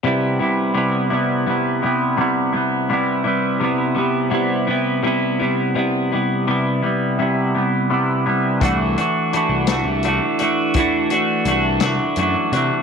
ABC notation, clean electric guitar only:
X:1
M:6/8
L:1/8
Q:3/8=56
K:Clyd
V:1 name="Clean electric guitar"
[C,G,B,E] [C,G,B,E] [C,G,B,E] [C,G,B,E] [C,G,B,E] [C,G,B,E] | [C,G,B,E] [C,G,B,E] [C,G,B,E] [C,G,B,E] [C,G,B,E] [C,G,B,E] | [C,G,B,E] [C,G,B,E] [C,G,B,E] [C,G,B,E] [C,G,B,E] [C,G,B,E] | [C,G,B,E] [C,G,B,E] [C,G,B,E] [C,G,B,E] [C,G,B,E] [C,G,B,E] |
[E,A,DF] [E,A,DF] [E,A,DF] [E,A,DF] [E,A,DF] [E,A,DF] | [E,A,DF] [E,A,DF] [E,A,DF] [E,A,DF] [E,A,DF] [E,A,DF] |]